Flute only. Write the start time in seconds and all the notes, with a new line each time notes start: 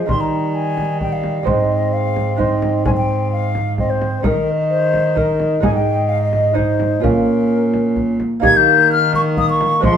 0.08 C6
0.21 A#5
0.55 G#5
1.02 G5
1.13 F5
1.48 D#5
1.93 F5
2.39 D#5
2.85 G#5
2.97 G5
3.32 F5
3.79 D#5
3.90 C5
4.25 A#4
4.70 C5
5.18 A#4
5.63 G#5
5.75 G5
6.09 F5
6.22 D#5
6.55 C5
7.03 A#4
8.44 G#6
8.57 G6
8.92 F6
9.15 C#6
9.39 D#6
9.50 C#6
9.85 C6